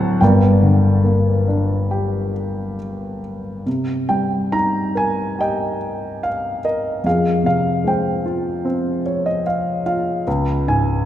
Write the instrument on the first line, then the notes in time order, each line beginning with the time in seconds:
grand piano
Already playing: D1 D2 A2 D3 F#3 A4 C5 F#5 A5 A#5
0.21 G1 G2 A#4 D5 G5
0.63 D3
1.04 A#3
1.48 D4
1.91 G4
3.66 C3
4.09 G3 G5
4.52 D#4 A#5
4.95 A#4 G#5
5.39 G4 D#5 G5
6.23 F5
6.65 A#4 D#5
7.04 F2 G#4 F5
7.43 C3 F5
7.84 G#3 C5 G5
8.26 F4
8.65 C4
9.06 C#5
9.26 D#5
9.46 F5
9.86 F4 F5
10.27 C#2
10.68 G#2 G#5